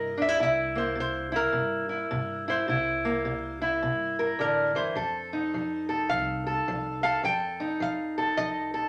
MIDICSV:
0, 0, Header, 1, 4, 480
1, 0, Start_track
1, 0, Tempo, 568720
1, 352, Time_signature, 4, 2, 24, 8
1, 7500, End_track
2, 0, Start_track
2, 0, Title_t, "Resonator guitar played with a steel bar"
2, 0, Program_c, 0, 25
2, 0, Note_on_c, 0, 75, 101
2, 141, Note_off_c, 0, 75, 0
2, 183, Note_on_c, 0, 76, 86
2, 346, Note_off_c, 0, 76, 0
2, 361, Note_on_c, 0, 76, 89
2, 656, Note_on_c, 0, 72, 79
2, 664, Note_off_c, 0, 76, 0
2, 822, Note_off_c, 0, 72, 0
2, 846, Note_on_c, 0, 72, 84
2, 1146, Note_off_c, 0, 72, 0
2, 1146, Note_on_c, 0, 70, 88
2, 2107, Note_on_c, 0, 72, 71
2, 2127, Note_off_c, 0, 70, 0
2, 3506, Note_off_c, 0, 72, 0
2, 3719, Note_on_c, 0, 70, 82
2, 3994, Note_off_c, 0, 70, 0
2, 4017, Note_on_c, 0, 72, 82
2, 5144, Note_on_c, 0, 77, 102
2, 5190, Note_off_c, 0, 72, 0
2, 5924, Note_off_c, 0, 77, 0
2, 5934, Note_on_c, 0, 77, 94
2, 6114, Note_off_c, 0, 77, 0
2, 6117, Note_on_c, 0, 79, 106
2, 6561, Note_off_c, 0, 79, 0
2, 6602, Note_on_c, 0, 77, 88
2, 7067, Note_on_c, 0, 75, 97
2, 7091, Note_off_c, 0, 77, 0
2, 7500, Note_off_c, 0, 75, 0
2, 7500, End_track
3, 0, Start_track
3, 0, Title_t, "Steel-string acoustic guitar"
3, 0, Program_c, 1, 25
3, 0, Note_on_c, 1, 48, 78
3, 0, Note_on_c, 1, 58, 56
3, 0, Note_on_c, 1, 64, 51
3, 0, Note_on_c, 1, 70, 66
3, 144, Note_off_c, 1, 64, 0
3, 148, Note_on_c, 1, 62, 63
3, 241, Note_off_c, 1, 62, 0
3, 241, Note_on_c, 1, 64, 48
3, 308, Note_off_c, 1, 48, 0
3, 329, Note_off_c, 1, 64, 0
3, 332, Note_on_c, 1, 48, 69
3, 339, Note_on_c, 1, 64, 64
3, 358, Note_off_c, 1, 70, 0
3, 634, Note_off_c, 1, 58, 0
3, 637, Note_on_c, 1, 58, 52
3, 786, Note_off_c, 1, 48, 0
3, 806, Note_on_c, 1, 48, 69
3, 1110, Note_off_c, 1, 64, 0
3, 1114, Note_on_c, 1, 64, 60
3, 1262, Note_off_c, 1, 48, 0
3, 1288, Note_on_c, 1, 48, 70
3, 1586, Note_off_c, 1, 64, 0
3, 1596, Note_on_c, 1, 64, 55
3, 1743, Note_off_c, 1, 48, 0
3, 1779, Note_on_c, 1, 48, 79
3, 2083, Note_off_c, 1, 64, 0
3, 2092, Note_on_c, 1, 64, 63
3, 2229, Note_off_c, 1, 48, 0
3, 2251, Note_off_c, 1, 64, 0
3, 2261, Note_on_c, 1, 48, 72
3, 2273, Note_on_c, 1, 64, 60
3, 2564, Note_off_c, 1, 58, 0
3, 2573, Note_on_c, 1, 58, 58
3, 2710, Note_off_c, 1, 48, 0
3, 2744, Note_on_c, 1, 48, 68
3, 3042, Note_off_c, 1, 64, 0
3, 3052, Note_on_c, 1, 64, 60
3, 3192, Note_off_c, 1, 48, 0
3, 3229, Note_on_c, 1, 48, 68
3, 3537, Note_on_c, 1, 70, 64
3, 3674, Note_off_c, 1, 48, 0
3, 3704, Note_on_c, 1, 50, 65
3, 4005, Note_off_c, 1, 50, 0
3, 4009, Note_on_c, 1, 52, 65
3, 4171, Note_off_c, 1, 64, 0
3, 4174, Note_off_c, 1, 70, 0
3, 4182, Note_on_c, 1, 53, 75
3, 4191, Note_off_c, 1, 52, 0
3, 4191, Note_on_c, 1, 69, 65
3, 4194, Note_off_c, 1, 58, 0
3, 4498, Note_on_c, 1, 63, 50
3, 4631, Note_off_c, 1, 53, 0
3, 4676, Note_on_c, 1, 53, 66
3, 4967, Note_off_c, 1, 69, 0
3, 4970, Note_on_c, 1, 69, 62
3, 5118, Note_off_c, 1, 53, 0
3, 5147, Note_on_c, 1, 53, 69
3, 5446, Note_off_c, 1, 69, 0
3, 5457, Note_on_c, 1, 69, 65
3, 5594, Note_off_c, 1, 53, 0
3, 5638, Note_on_c, 1, 53, 74
3, 5934, Note_off_c, 1, 69, 0
3, 5943, Note_on_c, 1, 69, 71
3, 6079, Note_off_c, 1, 53, 0
3, 6094, Note_off_c, 1, 63, 0
3, 6096, Note_off_c, 1, 69, 0
3, 6105, Note_on_c, 1, 53, 75
3, 6114, Note_on_c, 1, 69, 72
3, 6414, Note_on_c, 1, 63, 57
3, 6552, Note_off_c, 1, 53, 0
3, 6585, Note_on_c, 1, 53, 72
3, 6891, Note_off_c, 1, 69, 0
3, 6902, Note_on_c, 1, 69, 66
3, 7032, Note_off_c, 1, 53, 0
3, 7072, Note_on_c, 1, 53, 68
3, 7365, Note_off_c, 1, 69, 0
3, 7375, Note_on_c, 1, 69, 64
3, 7500, Note_off_c, 1, 53, 0
3, 7500, Note_off_c, 1, 63, 0
3, 7500, Note_off_c, 1, 69, 0
3, 7500, End_track
4, 0, Start_track
4, 0, Title_t, "Upright bass"
4, 0, Program_c, 2, 32
4, 0, Note_on_c, 2, 43, 93
4, 252, Note_off_c, 2, 43, 0
4, 350, Note_on_c, 2, 36, 94
4, 1304, Note_off_c, 2, 36, 0
4, 1304, Note_on_c, 2, 43, 94
4, 1693, Note_off_c, 2, 43, 0
4, 1785, Note_on_c, 2, 43, 94
4, 2174, Note_off_c, 2, 43, 0
4, 2278, Note_on_c, 2, 36, 101
4, 3229, Note_on_c, 2, 43, 92
4, 3242, Note_off_c, 2, 36, 0
4, 3617, Note_off_c, 2, 43, 0
4, 3715, Note_on_c, 2, 33, 84
4, 3982, Note_off_c, 2, 33, 0
4, 4008, Note_on_c, 2, 31, 69
4, 4173, Note_off_c, 2, 31, 0
4, 4187, Note_on_c, 2, 41, 98
4, 5154, Note_on_c, 2, 36, 90
4, 5166, Note_off_c, 2, 41, 0
4, 5540, Note_off_c, 2, 36, 0
4, 5637, Note_on_c, 2, 36, 84
4, 6021, Note_off_c, 2, 36, 0
4, 6108, Note_on_c, 2, 41, 94
4, 7072, Note_off_c, 2, 41, 0
4, 7072, Note_on_c, 2, 36, 94
4, 7457, Note_off_c, 2, 36, 0
4, 7500, End_track
0, 0, End_of_file